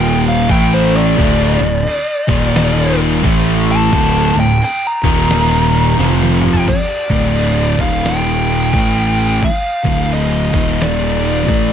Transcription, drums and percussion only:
0.49 kick loud
0.49 crash medium
1.18 kick loud
1.18 crash medium
1.87 crash medium
2.29 kick loud
2.55 snare loud
2.55 crash medium
3.24 kick loud
3.24 crash medium
3.93 kick loud
3.93 crash medium
4.62 crash medium
5.04 kick loud
5.30 snare loud
5.30 crash medium
6.00 snare medium
6.20 high tom medium
6.42 mid tom loud
6.54 floor tom medium
6.68 kick loud
6.68 crash loud
6.68 crash medium
7.10 kick loud
7.10 crash medium
7.36 crash medium
7.79 kick loud
7.79 crash medium
8.05 snare loud
8.05 crash medium
8.47 crash medium
8.73 kick loud
8.73 crash medium
9.16 crash medium
9.43 kick loud
9.43 crash medium
9.85 kick loud
9.85 crash medium
10.11 crash medium
10.54 kick loud
10.54 crash medium
10.81 snare loud
10.81 crash medium
11.23 crash medium
11.48 kick loud
11.48 crash medium

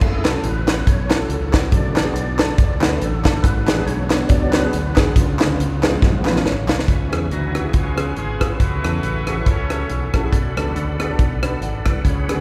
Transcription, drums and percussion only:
0.01 kick medium
0.01 crash medium
0.24 snare loud
0.24 clap medium
0.24 closed hi-hat medium
0.43 closed hi-hat medium
0.67 snare loud
0.67 clap medium
0.67 closed hi-hat medium
0.87 kick loud
0.87 closed hi-hat medium
1.10 snare loud
1.10 clap loud
1.10 closed hi-hat medium
1.30 closed hi-hat medium
1.53 kick medium
1.53 snare loud
1.53 clap medium
1.53 closed hi-hat medium
1.72 kick loud
1.72 closed hi-hat loud
1.96 snare loud
1.96 clap medium
1.96 closed hi-hat medium
2.16 closed hi-hat medium
2.39 snare loud
2.39 clap loud
2.39 closed hi-hat medium
2.58 kick loud
2.58 closed hi-hat medium
2.81 snare loud
2.81 clap loud
2.81 closed hi-hat medium
3.01 closed hi-hat medium
3.24 kick medium
3.24 snare loud
3.24 clap medium
3.24 closed hi-hat medium
3.44 kick loud
3.44 closed hi-hat loud
3.67 snare loud
3.67 clap loud
3.67 closed hi-hat medium
3.87 closed hi-hat medium
4.10 snare loud
4.10 clap medium
4.10 closed hi-hat medium
4.29 kick loud
4.29 closed hi-hat loud
4.53 snare loud
4.53 clap loud
4.53 closed hi-hat medium
4.73 closed hi-hat medium
4.96 kick loud
4.96 snare loud
4.96 clap medium
4.96 closed hi-hat medium
5.16 kick loud
5.16 closed hi-hat loud
5.39 snare loud
5.39 clap loud
5.39 closed hi-hat medium
5.60 closed hi-hat medium
5.83 snare loud
5.83 clap loud
5.83 closed hi-hat medium
6.02 kick loud
6.02 snare medium
6.25 snare medium
6.25 clap loud
6.36 snare medium
6.46 snare medium
6.68 snare loud
6.68 clap loud
6.79 snare medium
6.88 kick loud
6.88 closed hi-hat medium
7.12 cross-stick loud
7.12 closed hi-hat medium
7.31 closed hi-hat medium
7.55 cross-stick medium
7.55 closed hi-hat medium
7.73 kick loud
7.73 closed hi-hat medium
7.98 cross-stick loud
7.98 closed hi-hat medium
8.16 closed hi-hat medium
8.41 kick medium
8.41 cross-stick loud
8.41 closed hi-hat medium
8.60 kick medium
8.60 closed hi-hat medium
8.84 cross-stick loud
8.84 closed hi-hat medium
9.03 closed hi-hat medium
9.27 cross-stick medium
9.27 closed hi-hat medium
9.46 kick loud
9.46 closed hi-hat medium
9.70 cross-stick loud
9.70 closed hi-hat medium
9.89 closed hi-hat medium
10.14 kick medium
10.14 cross-stick loud
10.14 closed hi-hat medium
10.33 kick medium
10.33 closed hi-hat medium
10.57 cross-stick loud
10.57 closed hi-hat medium
10.76 closed hi-hat medium
10.99 cross-stick loud
10.99 closed hi-hat medium
11.19 kick loud
11.19 closed hi-hat medium
11.43 cross-stick loud
11.43 closed hi-hat medium
11.62 closed hi-hat medium
11.85 kick medium
11.85 cross-stick loud
11.85 closed hi-hat medium
12.05 kick medium
12.05 closed hi-hat medium
12.29 cross-stick loud
12.29 closed hi-hat medium

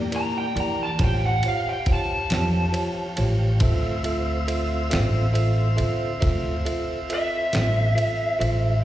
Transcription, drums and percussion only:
0.12 ride medium
0.57 ride medium
0.99 kick loud
0.99 snare soft
0.99 ride medium
1.43 ride medium
1.86 kick medium
1.86 ride medium
2.30 snare loud
2.30 ride medium
2.74 ride medium
3.17 ride medium
3.60 kick loud
3.60 ride medium
4.04 ride medium
4.48 ride medium
4.91 snare loud
4.91 ride medium
5.35 ride medium
5.78 ride medium
6.22 kick loud
6.22 snare soft
6.22 ride medium
6.66 ride medium
7.10 ride medium
7.53 snare loud
7.53 ride medium
7.98 ride medium
8.41 ride medium

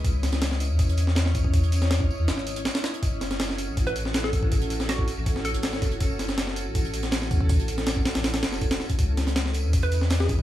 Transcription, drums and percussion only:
0.04 kick loud
0.04 open hi-hat medium
0.04 tambourine medium
0.23 snare soft
0.23 open hi-hat medium
0.23 tambourine medium
0.32 snare medium
0.32 closed hi-hat soft
0.41 snare loud
0.41 open hi-hat medium
0.41 tambourine medium
0.51 snare medium
0.51 snare soft
0.60 open hi-hat medium
0.60 tambourine medium
0.79 kick loud
0.79 open hi-hat medium
0.79 tambourine medium
0.89 closed hi-hat soft
0.97 open hi-hat medium
0.97 tambourine medium
1.07 snare soft
1.15 snare loud
1.15 open hi-hat medium
1.15 tambourine medium
1.26 snare medium
1.35 kick loud
1.35 open hi-hat medium
1.35 tambourine medium
1.44 kick loud
1.54 kick loud
1.54 open hi-hat medium
1.54 tambourine medium
1.64 closed hi-hat soft
1.72 open hi-hat medium
1.72 tambourine medium
1.82 snare medium
1.82 closed hi-hat soft
1.90 snare loud
1.90 open hi-hat medium
1.90 tambourine medium
2.00 kick loud
2.00 snare soft
2.11 tambourine medium
2.28 snare loud
2.28 open hi-hat medium
2.28 tambourine medium
2.38 snare soft
2.46 open hi-hat medium
2.46 tambourine medium
2.56 closed hi-hat soft
2.65 snare loud
2.65 open hi-hat medium
2.65 tambourine medium
2.75 snare loud
2.75 open hi-hat medium
2.84 snare loud
2.84 open hi-hat medium
2.84 tambourine medium
2.94 closed hi-hat soft
3.03 kick loud
3.03 open hi-hat medium
3.03 tambourine loud
3.21 snare medium
3.21 open hi-hat medium
3.21 tambourine medium
3.31 snare medium
3.31 closed hi-hat soft
3.39 snare loud
3.39 open hi-hat medium
3.39 tambourine medium
3.49 snare soft
3.49 snare medium
3.58 open hi-hat medium
3.58 tambourine medium
3.77 kick loud
3.77 open hi-hat medium
3.77 tambourine medium
3.87 closed hi-hat soft
3.96 open hi-hat medium
3.96 tambourine medium
4.05 snare soft
4.14 snare loud
4.14 open hi-hat medium
4.14 tambourine medium
4.24 snare medium
4.33 kick loud
4.33 open hi-hat medium
4.33 tambourine medium
4.43 kick loud
4.52 kick loud
4.52 open hi-hat medium
4.52 tambourine medium
4.62 closed hi-hat soft
4.70 open hi-hat medium
4.70 tambourine medium
4.80 snare medium
4.80 closed hi-hat soft
4.89 snare loud
4.89 open hi-hat medium
4.89 tambourine medium
4.99 kick loud
4.99 snare soft
5.08 open hi-hat medium
5.08 tambourine medium
5.26 kick loud
5.26 open hi-hat medium
5.26 tambourine medium
5.36 snare soft
5.45 open hi-hat medium
5.45 tambourine medium
5.54 closed hi-hat soft
5.63 snare loud
5.63 open hi-hat medium
5.63 tambourine medium
5.73 snare soft
5.82 kick loud
5.82 snare loud
5.82 open hi-hat medium
5.82 tambourine medium
5.92 closed hi-hat soft
6.00 kick loud
6.00 open hi-hat medium
6.00 tambourine medium
6.19 snare soft
6.19 open hi-hat medium
6.19 tambourine medium
6.28 snare medium
6.28 closed hi-hat soft
6.38 snare loud
6.38 open hi-hat medium
6.38 tambourine medium
6.47 snare soft
6.47 snare medium
6.56 open hi-hat medium
6.56 tambourine medium
6.75 kick loud
6.75 open hi-hat medium
6.75 tambourine medium
6.85 closed hi-hat soft
6.94 open hi-hat medium
6.94 tambourine medium
7.03 snare soft
7.03 closed hi-hat soft
7.12 snare loud
7.12 open hi-hat medium
7.12 tambourine medium
7.22 snare medium
7.31 kick loud
7.31 open hi-hat medium
7.31 tambourine medium
7.41 kick loud
7.49 kick loud
7.49 open hi-hat medium
7.49 tambourine medium
7.60 closed hi-hat soft
7.68 open hi-hat medium
7.68 tambourine medium
7.78 snare medium
7.78 closed hi-hat soft
7.86 snare loud
7.86 open hi-hat medium
7.86 tambourine loud
7.96 kick medium
7.96 snare soft
8.05 snare loud
8.05 open hi-hat medium
8.05 tambourine medium
8.15 snare loud
8.15 open hi-hat medium
8.24 snare loud
8.24 open hi-hat medium
8.24 tambourine loud
8.34 snare loud
8.34 open hi-hat medium
8.43 snare loud
8.43 snare medium
8.43 open hi-hat medium
8.43 tambourine medium
8.47 snare medium
8.47 tambourine medium
8.52 snare soft
8.52 snare medium
8.52 tambourine medium
8.61 kick medium
8.61 open hi-hat medium
8.61 tambourine medium
8.71 snare loud
8.71 open hi-hat medium
8.80 snare soft
8.80 tambourine medium
8.89 kick medium
8.89 closed hi-hat soft
8.89 open hi-hat medium
8.99 kick loud
8.99 open hi-hat medium
8.99 tambourine medium
9.17 snare soft
9.17 open hi-hat medium
9.17 tambourine medium
9.27 snare medium
9.27 closed hi-hat soft
9.36 snare loud
9.36 open hi-hat medium
9.36 tambourine medium
9.46 snare soft
9.46 snare medium
9.54 open hi-hat medium
9.54 tambourine medium
9.73 kick loud
9.73 open hi-hat medium
9.73 tambourine medium
9.82 closed hi-hat soft
9.91 open hi-hat medium
9.91 tambourine medium
10.01 snare soft
10.10 snare loud
10.10 open hi-hat medium
10.10 tambourine medium
10.20 snare medium
10.28 kick loud
10.28 open hi-hat medium
10.28 tambourine medium
10.39 kick loud

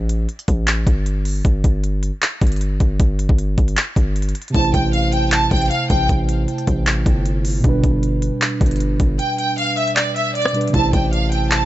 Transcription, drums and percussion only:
0.09 closed hi-hat medium
0.29 closed hi-hat medium
0.39 closed hi-hat medium
0.48 kick medium
0.48 closed hi-hat medium
0.67 clap loud
0.67 closed hi-hat medium
0.87 kick medium
0.87 closed hi-hat medium
1.06 closed hi-hat medium
1.25 open hi-hat medium
1.45 kick loud
1.45 closed hi-hat medium
1.64 kick medium
1.64 closed hi-hat medium
1.84 closed hi-hat medium
2.03 closed hi-hat medium
2.22 clap loud
2.22 closed hi-hat medium
2.42 kick medium
2.42 closed hi-hat medium
2.47 closed hi-hat medium
2.52 closed hi-hat medium
2.56 closed hi-hat medium
2.61 closed hi-hat medium
2.80 kick loud
2.80 closed hi-hat medium
3.00 kick loud
3.00 closed hi-hat medium
3.19 closed hi-hat medium
3.29 kick loud
3.38 closed hi-hat medium
3.58 kick loud
3.58 closed hi-hat medium
3.68 closed hi-hat medium
3.77 clap loud
3.77 closed hi-hat medium
3.96 kick medium
3.96 closed hi-hat medium
4.16 closed hi-hat medium
4.22 closed hi-hat medium
4.29 closed hi-hat medium
4.35 closed hi-hat medium
4.35 open hi-hat medium
4.42 closed hi-hat medium
4.48 closed hi-hat medium
4.54 kick loud
4.54 closed hi-hat medium
4.74 kick medium
4.74 closed hi-hat medium
4.93 closed hi-hat medium
5.12 closed hi-hat medium
5.32 clap loud
5.32 closed hi-hat medium
5.51 kick medium
5.51 closed hi-hat medium
5.56 closed hi-hat medium
5.62 closed hi-hat medium
5.66 closed hi-hat medium
5.71 closed hi-hat medium
5.90 kick loud
5.90 closed hi-hat medium
6.09 kick loud
6.09 closed hi-hat medium
6.29 closed hi-hat medium
6.48 closed hi-hat medium
6.58 closed hi-hat medium
6.67 kick medium
6.67 closed hi-hat medium
6.87 clap loud
6.87 closed hi-hat medium
7.06 kick medium
7.06 closed hi-hat medium
7.26 closed hi-hat medium
7.45 open hi-hat medium
7.64 kick loud
7.64 closed hi-hat medium
7.84 kick medium
7.84 closed hi-hat medium
8.03 closed hi-hat medium
8.22 closed hi-hat medium
8.41 clap loud
8.41 closed hi-hat medium
8.61 kick medium
8.61 closed hi-hat medium
8.66 closed hi-hat medium
8.71 closed hi-hat medium
8.76 closed hi-hat medium
8.80 closed hi-hat medium
9.00 kick loud
9.00 closed hi-hat medium
9.19 closed hi-hat medium
9.38 closed hi-hat medium
9.58 closed hi-hat medium
9.77 closed hi-hat medium
9.87 closed hi-hat medium
9.96 clap loud
9.96 closed hi-hat medium
10.16 closed hi-hat medium
10.35 closed hi-hat medium
10.42 cross-stick loud
10.42 closed hi-hat medium
10.48 closed hi-hat medium
10.54 closed hi-hat medium
10.54 open hi-hat medium
10.61 closed hi-hat medium
10.68 closed hi-hat medium
10.74 kick loud
10.74 closed hi-hat medium
10.93 kick medium
10.93 closed hi-hat medium
11.13 closed hi-hat medium
11.32 closed hi-hat medium
11.51 clap loud
11.51 closed hi-hat medium

